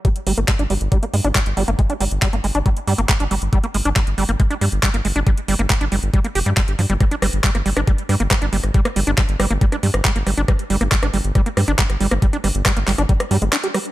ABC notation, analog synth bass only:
X:1
M:4/4
L:1/16
Q:1/4=138
K:Gphr
V:1 name="Analog synth bass" clef=bass
z2 G,,, G,,, z G,,, G,,, G,,, z2 G,, G,,, z G,,, G,,, G,,, | z2 G,,, G,,, z G,,, G,,, G,,, z2 G,, G,,, z G,,, G,,, G,,, | z2 G,,, G,,, z G,,, G,,, G,,, z2 G,, G,,, z G,,, G,,, G,,, | z2 G,,, G,,, z G,,, G,,, G,,, z2 F,,, G,, z G,,, G,, G,,, |
z2 G,,, G,,, z G,,, G,,, G,,, z2 G,, G,,, z G,,, G,,, G,,, | z2 G,,, G,,, z G,,, G,,, G,,, z2 G,, G,,, z G,,, G,,, G,,, | z2 G,,, G,,, z G,,, G,,, G,,, z2 G,, G,,, z G,,, G,,, G,,, | z2 G,,, G,,, z G,,, G,,, G,,, z2 G,, G,,, z4 |]